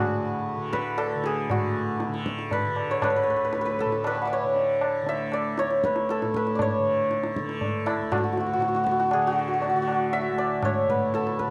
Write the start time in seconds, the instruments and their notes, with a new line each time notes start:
Already playing: tanpura D2 A2 D3, santur F#4 G#4 B4
0.56 tanpura D3
0.73 santur B4, tabla ke
0.98 santur A4, tabla na
1.16 tanpura D3
1.24 santur G#4, tabla te
1.50 tanpura A2, santur F#4, tabla tin, tabla ge
2.00 tabla te
2.08 tanpura D3
2.14 tabla te
2.26 tabla ke
2.39 tabla te
2.51 santur B4, tabla tin, tabla ge
2.66 tanpura D3
2.76 tabla na
2.91 santur C#5
3.02 santur B4, tabla na, tabla ge
3.10 santur B4
3.16 santur B4
3.23 tanpura D2, santur B4
3.30 santur B4
3.36 santur B4
3.45 santur B4
3.53 santur B4, tabla te
3.61 santur B4
3.65 santur B4, tabla te
3.79 santur A4, tabla ke
3.85 tanpura A2
3.92 tabla te
4.04 santur B4 D6, tabla na
4.09 santur B5 C#6
4.15 santur G#5 A5
4.22 santur E5 F#5
4.27 santur D5
4.33 santur C#5
4.44 tanpura D3
4.56 tabla tin
4.81 tabla na
5.02 tanpura D3
5.07 santur E5, tabla tin
5.32 santur D5, tabla na
5.58 tanpura D2, santur C#5, tabla te
5.71 tabla te
5.84 santur B4, tabla ke
5.96 tabla te
6.09 santur A4, tabla te
6.22 tanpura A2, tabla te
6.34 santur B4, tabla ke
6.47 tabla te
6.55 santur D5, tabla tin, tabla ge
6.62 santur C#5
6.79 tanpura D3
7.11 tabla te
7.24 tabla te
7.36 tanpura D3, tabla ke
7.49 tabla te
7.61 tabla tin, tabla ge
7.86 santur E4, tabla na
7.99 tanpura D2
8.12 santur F#4, tabla na, tabla ge
8.17 santur F#4
8.24 santur F#4
8.33 santur F#4
8.37 santur F#4, tabla te
8.46 santur F#4
8.53 tanpura A2, santur F#4
8.60 santur F#4, tabla te
8.68 santur F#4
8.75 santur F#4, tabla te
8.84 santur F#4, tabla ke
8.91 santur F#4
8.99 santur F#4, tabla te
9.11 santur G#4, tabla na
9.15 tanpura D3
9.27 santur F#4
9.32 santur F#4
9.39 santur F#4
9.48 santur F#4
9.54 santur F#4
9.62 santur F#4, tabla tin
9.69 santur F#4
9.74 tanpura D3, santur F#4
9.82 santur F#4
9.88 santur F#4, tabla na
10.13 santur E5, tabla tin
10.32 tanpura D2
10.38 santur D5, tabla na
10.63 santur C#5, tabla na, tabla ge
10.88 tanpura A2, santur B4, tabla ge
11.14 santur A4, tabla te
11.27 tabla te
11.39 santur B4, tabla ke
11.47 tanpura D3